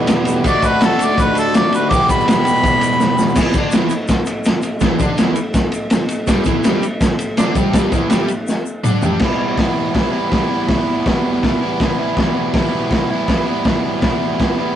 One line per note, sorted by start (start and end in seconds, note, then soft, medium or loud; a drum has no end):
0.00 0.43 E2 medium
0.00 0.43 B2 medium
0.00 0.43 E3 medium
0.00 0.44 G3 medium
0.00 0.44 B3 medium
0.00 0.44 G4 loud
0.07 snare loud
0.07 ride loud
0.07 shaker medium
0.25 ride medium
0.25 shaker loud
0.44 1.89 D3 medium
0.44 1.90 A3 medium
0.44 1.91 D4 loud
0.44 kick loud
0.44 ride loud
0.44 shaker medium
0.48 1.92 F#4 loud
0.48 0.68 D5 loud
0.62 kick medium
0.62 ride medium
0.62 shaker loud
0.66 0.86 B4 loud
0.81 snare loud
0.81 ride loud
0.81 shaker medium
0.85 1.06 A4 loud
0.99 ride medium
0.99 shaker loud
1.04 1.23 D5 loud
1.18 kick loud
1.18 ride medium
1.18 shaker medium
1.22 1.38 B4 loud
1.35 ride medium
1.35 shaker loud
1.39 1.56 A4 loud
1.54 1.73 D5 loud
1.54 snare loud
1.54 ride loud
1.54 shaker medium
1.72 1.88 B4 medium
1.72 ride medium
1.72 shaker loud
1.89 3.35 E2 medium
1.89 3.36 B2 medium
1.89 3.36 E3 medium
1.89 3.37 G3 medium
1.89 2.08 D6 loud
1.89 kick loud
1.89 ride loud
1.89 shaker medium
1.93 3.37 B3 medium
1.93 3.38 G4 loud
2.09 2.28 B5 medium
2.09 kick medium
2.09 ride medium
2.09 shaker loud
2.20 shaker soft
2.28 3.34 B5 loud
2.28 snare loud
2.28 ride loud
2.28 shaker medium
2.45 ride medium
2.45 shaker medium
2.56 shaker soft
2.63 kick loud
2.63 ride medium
2.63 shaker medium
2.81 ride medium
2.81 shaker loud
3.00 snare medium
3.00 shaker medium
3.18 snare medium
3.18 shaker loud
3.28 shaker soft
3.35 3.54 E2 medium
3.35 3.55 E3 medium
3.35 kick loud
3.35 snare loud
3.35 crash loud
3.35 shaker loud
3.53 3.74 D3 medium
3.53 kick loud
3.53 ride medium
3.53 shaker medium
3.58 3.74 D4 loud
3.71 3.91 E2 medium
3.71 3.92 E3 loud
3.71 snare loud
3.71 ride loud
3.71 shaker loud
3.90 muted overdriven electric guitar stroke medium
3.90 ride medium
3.90 shaker medium
4.08 kick loud
4.08 snare loud
4.08 ride medium
4.08 shaker medium
4.26 ride medium
4.26 shaker medium
4.44 snare loud
4.44 ride loud
4.44 shaker medium
4.62 ride medium
4.62 shaker medium
4.80 5.00 E2 medium
4.80 5.01 E3 loud
4.80 kick loud
4.80 snare loud
4.80 ride medium
4.80 shaker medium
4.99 5.18 D3 loud
4.99 5.19 D4 loud
4.99 kick loud
4.99 ride medium
4.99 shaker medium
5.18 5.36 E2 medium
5.18 5.37 E3 loud
5.18 snare loud
5.18 ride loud
5.18 shaker medium
5.36 muted overdriven electric guitar stroke medium
5.36 ride medium
5.36 shaker medium
5.54 kick loud
5.54 snare loud
5.54 ride loud
5.54 shaker medium
5.72 ride medium
5.72 shaker medium
5.90 snare loud
5.90 ride loud
5.90 shaker medium
6.09 ride medium
6.09 shaker medium
6.27 6.44 G2 medium
6.27 6.46 G3 medium
6.27 kick loud
6.27 snare loud
6.27 ride loud
6.27 shaker loud
6.45 6.64 E2 medium
6.45 6.65 E3 loud
6.45 kick medium
6.45 ride medium
6.45 shaker medium
6.64 6.82 G2 medium
6.64 6.83 G3 loud
6.64 snare loud
6.64 ride loud
6.64 shaker medium
6.83 muted overdriven electric guitar stroke medium
6.83 ride medium
6.83 shaker medium
7.01 kick loud
7.01 snare loud
7.01 ride medium
7.01 shaker medium
7.19 ride medium
7.19 shaker medium
7.37 7.56 D3 medium
7.37 7.56 D4 loud
7.37 snare loud
7.37 ride loud
7.37 shaker loud
7.55 7.73 G2 medium
7.55 7.74 G3 medium
7.55 kick loud
7.55 ride medium
7.55 shaker medium
7.73 7.92 G2 medium
7.73 7.93 G3 loud
7.73 kick loud
7.73 snare loud
7.73 ride loud
7.73 shaker loud
7.92 8.09 E2 loud
7.92 8.10 E3 loud
7.92 kick loud
7.92 ride medium
7.92 shaker medium
8.09 8.27 G2 medium
8.09 8.29 G3 loud
8.09 snare loud
8.09 ride loud
8.09 shaker medium
8.28 muted overdriven electric guitar stroke medium
8.28 ride medium
8.28 shaker medium
8.47 snare medium
8.47 shaker medium
8.66 shaker medium
8.84 9.03 D3 medium
8.84 9.03 D4 loud
8.84 mid tom loud
8.84 shaker loud
9.01 9.19 G2 loud
9.01 9.21 G3 loud
9.01 floor tom loud
9.01 shaker medium
9.19 9.56 E2 medium
9.19 9.56 B2 medium
9.19 9.58 E3 medium
9.19 9.58 G3 medium
9.19 9.59 B3 medium
9.19 kick loud
9.19 snare loud
9.19 crash loud
9.24 9.60 E4 medium
9.56 10.67 E2 medium
9.56 10.14 B2 medium
9.56 9.93 E3 medium
9.56 9.94 G3 medium
9.56 9.96 B3 medium
9.56 9.97 E4 loud
9.56 kick loud
9.56 snare loud
9.56 open hi-hat medium
9.94 10.16 E3 medium
9.94 10.15 G3 medium
9.94 10.13 B3 medium
9.94 10.12 E4 medium
9.94 kick loud
9.94 snare loud
9.94 open hi-hat soft
10.12 10.29 E3 medium
10.12 10.31 G3 medium
10.12 10.32 B3 medium
10.12 10.33 E4 medium
10.29 10.52 E3 medium
10.29 10.51 G3 medium
10.29 10.50 B3 medium
10.29 kick loud
10.29 snare loud
10.29 open hi-hat medium
10.34 10.48 E4 medium
10.49 10.68 E3 medium
10.49 10.68 G3 medium
10.49 10.69 B3 medium
10.49 10.69 E4 medium
10.67 11.04 E2 medium
10.67 11.04 B2 medium
10.67 11.06 E3 medium
10.67 11.06 G3 medium
10.67 11.07 B3 medium
10.67 11.07 E4 medium
10.67 kick loud
10.67 snare loud
10.67 open hi-hat medium
11.05 12.18 E2 medium
11.05 11.62 B2 medium
11.05 11.42 E3 medium
11.05 11.43 G3 medium
11.05 11.44 B3 loud
11.05 11.45 E4 medium
11.05 kick loud
11.05 snare loud
11.05 open hi-hat medium
11.43 11.64 E3 medium
11.43 11.63 G3 medium
11.43 11.62 B3 medium
11.43 11.60 E4 medium
11.43 kick loud
11.43 snare loud
11.43 open hi-hat medium
11.61 11.80 E3 medium
11.61 11.81 G3 medium
11.61 11.82 B3 medium
11.61 11.83 E4 medium
11.80 12.01 E3 medium
11.80 12.00 G3 medium
11.80 11.99 B3 medium
11.80 11.98 E4 medium
11.80 kick loud
11.80 snare loud
11.80 open hi-hat medium
11.98 12.19 E3 medium
11.98 12.19 G3 medium
11.98 12.20 B3 medium
11.98 12.21 E4 medium
12.17 12.53 E2 medium
12.17 12.53 B2 medium
12.17 12.54 E3 medium
12.17 12.55 G3 medium
12.17 12.56 B3 medium
12.17 kick loud
12.17 snare loud
12.17 open hi-hat soft
12.21 12.56 E4 medium
12.54 13.64 E2 medium
12.54 13.10 B2 medium
12.54 12.90 E3 medium
12.54 12.92 G3 medium
12.54 12.93 B3 loud
12.54 12.93 E4 medium
12.54 kick loud
12.54 snare loud
12.54 open hi-hat medium
12.91 13.14 E3 medium
12.91 13.13 G3 medium
12.91 13.12 B3 medium
12.91 13.10 E4 medium
12.91 kick loud
12.91 snare loud
12.91 open hi-hat medium
13.10 13.27 E3 medium
13.10 13.28 G3 medium
13.10 13.29 B3 medium
13.10 13.30 E4 medium
13.27 13.49 E3 medium
13.27 13.48 G3 medium
13.27 13.46 B3 medium
13.27 13.45 E4 medium
13.27 kick loud
13.27 snare loud
13.27 open hi-hat medium
13.46 13.66 E3 medium
13.46 13.66 G3 medium
13.46 13.67 B3 medium
13.46 13.68 E4 medium
13.64 14.01 E2 medium
13.64 14.02 B2 medium
13.64 14.03 E3 medium
13.64 14.04 G3 medium
13.64 14.04 B3 medium
13.64 14.04 E4 medium
13.64 kick loud
13.64 snare loud
13.64 open hi-hat soft
14.01 14.76 E2 medium
14.01 14.58 B2 medium
14.01 14.38 E3 medium
14.01 14.39 G3 medium
14.01 14.40 B3 loud
14.01 14.42 E4 loud
14.01 kick loud
14.01 snare loud
14.01 open hi-hat medium
14.38 14.61 E3 medium
14.38 14.60 G3 medium
14.38 14.59 B3 medium
14.38 kick medium
14.38 snare loud
14.38 open hi-hat medium
14.42 14.57 E4 medium
14.58 14.75 E3 medium
14.58 14.76 G3 medium
14.58 14.76 B3 medium
14.58 14.76 E4 medium